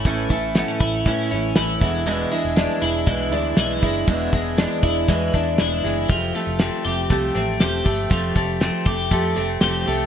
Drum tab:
HH |xxxxxxxo|xxxxxxxo|xxxxxxxo|xxxxxxxo|
SD |--o---o-|--o---o-|--o---o-|--o---o-|
BD |oo-oo--o|----o--o|oo-ooo--|o---o--o|

HH |xxxxxxxo|
SD |--o---o-|
BD |oo-oo---|